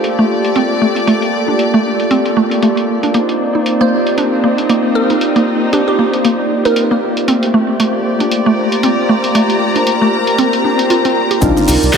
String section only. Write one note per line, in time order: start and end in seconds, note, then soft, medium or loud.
0.00 3.14 G4 medium
0.00 3.14 D5 medium
3.14 8.08 C4 medium
3.82 11.97 G4 medium
3.94 7.28 D#4 medium
7.79 11.42 D5 medium
8.54 11.97 A#5 medium
11.42 11.97 C4 medium